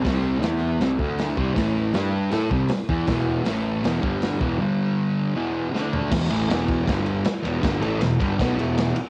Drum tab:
CC |--------|--------|--------|--------|
RD |--------|--------|--------|--------|
HH |o-o-o-o-|o-o-o-o-|o-o-o-o-|--------|
SD |o-o-o-o-|o-o-o-o-|o-o-o-o-|------o-|
FT |--------|--------|--------|-------o|
BD |o----o-o|o----o-o|o----o-o|--------|

CC |x-------|--------|
RD |-xxxxxxx|xxxxxxxx|
HH |--------|--------|
SD |o-o-o-o-|o-o-o-o-|
FT |--------|--------|
BD |o--oo---|o--oo---|